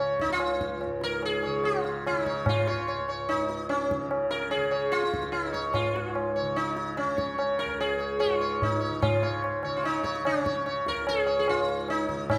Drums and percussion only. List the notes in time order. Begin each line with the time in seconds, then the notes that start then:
0.20 tabla ke
0.30 tabla te
0.40 tabla na
0.61 tabla ke
0.81 tabla na
1.01 tabla te
1.22 tabla na
1.43 tabla na
1.64 tabla na
1.85 tabla te
2.06 tabla na
2.26 tabla ke
2.46 tabla na, tabla ge
2.68 tabla te
2.88 tabla na
3.08 tabla na
3.29 tabla na
3.50 tabla te
3.70 tabla na
3.91 tabla ke
4.11 tabla na
4.31 tabla te
4.51 tabla na
4.72 tabla na
4.92 tabla te
5.04 tabla te
5.14 tabla ke
5.23 tabla te
5.33 tabla na
5.54 tabla ke
5.74 tabla na, tabla ge
5.96 tabla te
6.15 tabla na
6.36 tabla na
6.57 tabla na
6.77 tabla te
6.97 tabla na
7.18 tabla ke
7.39 tabla na
7.59 tabla te
7.81 tabla na
8.00 tabla na
8.20 tabla na
8.42 tabla te
8.62 tabla na, tabla ge
8.82 tabla te
9.03 tabla na, tabla ge
9.23 tabla te
9.44 tabla na
9.63 tabla na
9.84 tabla na
10.04 tabla ke
10.15 tabla te
10.25 tabla na
10.46 tabla ke
10.66 tabla na
10.86 tabla te
11.07 tabla na
11.27 tabla na
11.48 tabla na
11.69 tabla te
11.88 tabla na
12.09 tabla ke
12.30 tabla na, tabla ge